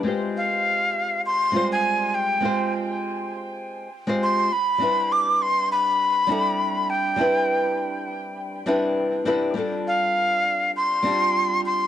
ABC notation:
X:1
M:4/4
L:1/16
Q:"Swing 16ths" 1/4=101
K:C
V:1 name="Flute"
z2 f6 c'3 _a3 g2- | g2 z8 z2 c'2 b2- | b2 d'2 c'2 b8 g2- | g6 z8 z2 |
z2 f6 c'6 c'2 |]
V:2 name="Nylon-string guitar"
[_A,CFGc]8- [A,CFGc]2 [G,A,CFc]6 | [_A,CFGc]8- [A,CFGc]2 z [A,CFGc]3 z2 | [G,CDEB]8- [G,CDEB]2 [G,CDEA]6 | [G,CDEB]8- [G,CDEB]2 [G,CDEB]4 [G,CDEB]2 |
[G,CDFA]8- [G,CDFA]2 [G,CDFG]6 |]